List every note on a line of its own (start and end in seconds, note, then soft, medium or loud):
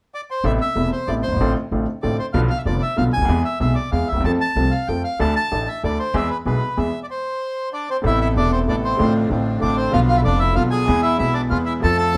0.14 0.21 D5 medium
0.31 0.44 C5 medium
0.44 0.58 A1 medium
0.44 0.58 A2 medium
0.44 0.58 C3 medium
0.44 0.58 A3 soft
0.44 0.58 B3 soft
0.44 0.58 E4 medium
0.44 0.52 E5 medium
0.61 0.90 E5 medium
0.75 0.89 E1 soft
0.75 0.90 E1 soft
0.75 0.90 E2 soft
0.75 0.89 C3 soft
0.75 0.89 A3 soft
0.75 0.90 B3 soft
0.75 0.90 E4 soft
0.92 1.09 C5 medium
1.07 1.21 A1 soft
1.07 1.22 A1 soft
1.07 1.22 A2 soft
1.07 1.22 C3 soft
1.07 1.22 A3 soft
1.07 1.22 B3 soft
1.07 1.22 E4 soft
1.07 1.15 D5 medium
1.23 1.53 C5 medium
1.28 1.31 F#1 soft
1.28 1.32 F#1 soft
1.32 1.36 G1 soft
1.36 1.39 G#1 medium
1.36 1.40 G#1 medium
1.36 1.53 A1 medium
1.40 1.54 A1 medium
1.40 1.54 A2 medium
1.40 1.54 D3 medium
1.40 1.54 A3 soft
1.40 1.54 C4 soft
1.40 1.54 F4 medium
1.71 1.85 A1 soft
1.71 1.85 A2 soft
1.71 1.85 D3 soft
1.71 1.85 A3 soft
1.71 1.85 C4 soft
1.71 1.85 F4 soft
2.02 2.16 A1 soft
2.02 2.17 A1 soft
2.02 2.16 A2 soft
2.02 2.16 D3 soft
2.02 2.16 A3 soft
2.02 2.16 C4 soft
2.02 2.17 F4 soft
2.02 2.17 D5 medium
2.19 2.26 C5 medium
2.33 2.47 B1 medium
2.33 2.48 B1 medium
2.33 2.48 B2 medium
2.33 2.47 D3 medium
2.33 2.47 F3 medium
2.33 2.48 B3 medium
2.33 2.48 F4 medium
2.33 2.40 F5 medium
2.50 2.58 F5 medium
2.58 2.62 E5 medium
2.65 2.79 F1 medium
2.65 2.79 F1 soft
2.65 2.80 F2 soft
2.65 2.79 D3 soft
2.65 2.79 F3 soft
2.65 2.79 B3 soft
2.65 2.80 F4 soft
2.65 2.82 D5 medium
2.82 2.97 E5 medium
2.96 3.10 B1 soft
2.96 3.11 B1 medium
2.96 3.11 B2 soft
2.96 3.10 D3 soft
2.96 3.10 F3 soft
2.96 3.11 B3 soft
2.96 3.11 F4 soft
2.96 3.04 F5 medium
3.13 3.21 C#2 soft
3.13 3.42 G#5 medium
3.17 3.21 C#2 soft
3.17 3.25 D2 soft
3.21 3.24 D2 soft
3.21 3.28 D#2 medium
3.21 3.29 D#2 medium
3.28 3.42 E2 medium
3.28 3.42 E3 medium
3.28 3.42 G#3 soft
3.28 3.42 B3 soft
3.28 3.42 G#4 medium
3.45 3.59 E5 medium
3.60 3.74 B1 medium
3.60 3.74 B1 soft
3.60 3.74 B2 soft
3.60 3.74 E3 soft
3.60 3.74 G#3 soft
3.60 3.74 B3 soft
3.60 3.74 G#4 soft
3.60 3.75 E5 medium
3.75 3.90 D5 medium
3.92 4.05 E2 soft
3.92 4.06 E2 soft
3.92 4.06 E3 soft
3.92 4.05 G#3 soft
3.92 4.05 B3 soft
3.92 4.06 G#4 soft
3.92 4.08 F5 medium
4.08 4.23 E5 medium
4.12 4.15 D2 soft
4.12 4.16 D2 soft
4.12 4.19 D#2 soft
4.16 4.20 D#2 soft
4.16 4.23 E2 medium
4.20 4.24 E2 medium
4.20 4.37 F2 medium
4.25 4.38 F2 medium
4.25 4.38 F3 medium
4.25 4.38 A3 soft
4.25 4.38 C4 soft
4.25 4.38 A4 medium
4.25 4.32 A5 medium
4.41 4.73 A5 medium
4.56 4.69 C2 soft
4.56 4.70 C2 soft
4.56 4.70 C3 soft
4.56 4.70 F3 soft
4.56 4.70 A3 soft
4.56 4.70 C4 soft
4.56 4.70 A4 soft
4.71 4.88 F5 medium
4.88 5.02 F2 soft
4.88 5.02 F3 soft
4.88 5.02 A3 soft
4.88 5.02 C4 soft
4.88 5.02 A4 soft
4.88 5.03 G5 medium
5.04 5.19 F5 medium
5.19 5.33 D2 medium
5.19 5.33 D3 medium
5.19 5.33 E3 medium
5.19 5.33 A3 medium
5.19 5.33 D4 medium
5.19 5.33 A4 medium
5.19 5.34 A5 medium
5.36 5.68 A5 medium
5.51 5.65 A1 soft
5.51 5.65 A1 medium
5.51 5.65 A2 soft
5.51 5.65 E3 soft
5.51 5.65 A3 soft
5.51 5.65 D4 soft
5.51 5.65 A4 soft
5.68 5.82 E5 medium
5.83 5.97 D2 medium
5.83 5.97 D2 soft
5.83 5.97 D3 soft
5.83 5.96 E3 soft
5.83 5.97 A3 soft
5.83 5.97 D4 soft
5.83 5.97 A4 soft
5.83 5.98 D5 medium
5.99 6.15 C5 medium
6.14 6.27 E2 medium
6.14 6.28 E2 medium
6.14 6.28 E3 medium
6.14 6.28 G#3 medium
6.14 6.28 B3 soft
6.14 6.28 G#4 medium
6.14 6.30 E5 medium
6.30 6.37 B4 medium
6.45 6.59 B1 medium
6.45 6.59 B1 soft
6.45 6.59 B2 soft
6.45 6.59 E3 soft
6.45 6.59 G#3 soft
6.45 6.59 B3 soft
6.45 6.59 G#4 soft
6.45 6.79 B4 medium
6.77 6.91 E2 soft
6.77 6.91 E3 soft
6.77 6.90 G#3 soft
6.77 6.91 B3 soft
6.77 6.91 G#4 soft
6.77 7.00 E5 medium
7.03 7.06 D5 medium
7.11 7.69 C5 medium
7.73 7.87 D4 medium
7.73 7.90 D5 medium
7.90 7.97 C4 soft
7.90 7.97 C5 medium
8.02 8.34 A1 medium
8.02 8.34 A2 medium
8.02 8.33 C3 medium
8.02 8.34 A3 soft
8.02 8.34 B3 medium
8.02 8.35 B3 soft
8.02 8.34 A4 medium
8.06 8.35 E4 medium
8.06 8.20 E4 medium
8.06 8.20 E5 medium
8.21 8.28 E4 medium
8.21 8.28 E5 medium
8.35 8.66 E1 soft
8.35 8.66 E2 soft
8.35 8.64 C3 soft
8.35 8.66 A3 soft
8.35 8.66 B3 soft
8.35 8.67 B3 soft
8.35 8.52 D4 medium
8.35 8.67 E4 soft
8.35 8.66 A4 soft
8.35 8.51 D5 medium
8.52 8.60 C4 soft
8.52 8.59 C5 medium
8.66 8.98 A1 soft
8.66 8.98 A2 soft
8.66 8.97 C3 soft
8.66 8.97 A3 soft
8.66 8.98 B3 soft
8.66 8.76 D4 medium
8.66 8.98 A4 soft
8.66 8.76 D5 medium
8.70 8.99 E4 soft
8.84 9.13 C4 soft
8.84 9.13 C5 medium
8.97 9.29 A1 medium
8.97 9.29 A2 medium
8.97 9.28 D3 medium
8.97 9.28 A3 soft
8.97 9.29 C4 medium
8.97 9.30 C4 soft
8.97 9.29 D4 soft
8.97 9.29 F4 medium
9.02 9.30 F4 medium
9.29 9.60 A1 medium
9.29 9.60 A1 soft
9.29 9.60 A2 soft
9.29 9.58 D3 soft
9.29 9.60 A3 soft
9.29 9.61 C4 soft
9.29 9.61 D4 soft
9.29 9.61 F4 soft
9.29 9.62 F4 soft
9.60 9.92 A1 soft
9.60 9.92 A2 soft
9.60 9.90 D3 soft
9.60 9.91 A3 soft
9.60 9.92 C4 soft
9.60 9.77 D4 medium
9.60 9.92 D4 soft
9.60 9.92 F4 soft
9.60 9.76 D5 medium
9.64 9.93 F4 soft
9.77 9.92 C4 medium
9.77 9.92 C5 medium
9.92 10.23 B1 medium
9.92 10.24 B1 medium
9.92 10.23 B2 medium
9.92 10.21 D3 medium
9.92 10.22 F3 soft
9.92 10.23 B3 medium
9.92 10.23 D4 medium
9.92 10.00 F4 medium
9.92 10.23 F4 medium
9.92 10.24 F4 medium
9.92 10.00 F5 medium
10.08 10.17 F4 medium
10.08 10.17 F5 medium
10.17 10.21 E4 medium
10.17 10.20 E5 medium
10.22 10.55 F1 soft
10.22 10.55 F1 medium
10.22 10.55 F2 soft
10.22 10.52 D3 soft
10.22 10.53 F3 soft
10.22 10.54 B3 soft
10.22 10.55 B3 soft
10.22 10.54 D4 soft
10.22 10.55 F4 soft
10.22 10.39 D5 medium
10.26 10.40 D4 medium
10.26 10.55 F4 soft
10.39 10.55 E4 medium
10.39 10.55 E5 medium
10.53 10.86 B1 soft
10.53 10.87 B1 soft
10.53 10.86 B2 soft
10.53 10.85 D3 soft
10.53 10.86 F3 soft
10.53 10.86 B3 soft
10.53 10.86 D4 soft
10.53 10.63 F4 medium
10.53 10.86 F4 soft
10.53 10.63 F5 medium
10.58 10.87 F4 soft
10.71 11.01 G#4 medium
10.71 11.01 G#5 medium
10.85 11.18 E2 medium
10.85 10.87 E3 medium
10.85 11.15 E3 medium
10.85 11.16 G#3 soft
10.85 11.17 G#3 medium
10.85 11.17 B3 soft
10.85 11.18 B3 soft
10.85 11.18 E4 medium
10.85 11.19 G#4 medium
11.03 11.18 E4 medium
11.03 11.17 E5 medium
11.17 11.49 B1 soft
11.17 11.50 B1 medium
11.17 11.49 B2 soft
11.17 11.47 E3 soft
11.17 11.48 G#3 soft
11.17 11.49 G#3 soft
11.17 11.49 B3 soft
11.17 11.49 E4 soft
11.17 11.34 E4 medium
11.17 11.50 G#4 soft
11.17 11.34 E5 medium
11.34 11.42 D4 medium
11.34 11.41 D5 medium
11.48 11.81 E2 soft
11.48 11.82 E2 soft
11.48 11.50 E3 soft
11.48 11.81 E3 soft
11.48 11.81 G#3 soft
11.48 11.81 B3 soft
11.48 11.81 E4 soft
11.48 11.58 F4 medium
11.48 11.82 G#4 soft
11.48 11.58 F5 medium
11.66 11.73 E4 medium
11.66 11.73 E5 medium
11.80 12.13 F2 medium
11.80 12.14 F2 medium
11.80 11.82 F3 medium
11.80 12.11 F3 medium
11.80 12.13 A3 soft
11.80 12.13 C4 soft
11.80 12.14 C4 soft
11.80 12.14 F4 medium
11.80 11.98 A4 medium
11.80 11.96 A5 medium
11.84 12.14 A4 medium
11.98 12.17 A4 medium
11.98 12.17 A5 loud
12.13 12.17 F3 soft
12.13 12.17 A3 soft